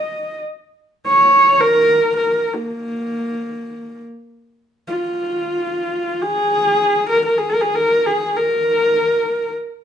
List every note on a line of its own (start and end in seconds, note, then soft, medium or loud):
0.00 0.37 D#5 medium
1.08 1.62 C#5 medium
1.60 2.16 A#4 medium
2.17 2.56 A#4 medium
2.54 3.99 A#3 medium
4.87 6.23 F4 medium
6.22 7.09 G#4 medium
7.09 7.24 A#4 medium
7.25 7.39 A#4 medium
7.38 7.51 G#4 medium
7.49 7.62 A#4 medium
7.61 7.76 G#4 medium
7.75 8.07 A#4 medium
8.06 8.38 G#4 medium
8.37 9.50 A#4 medium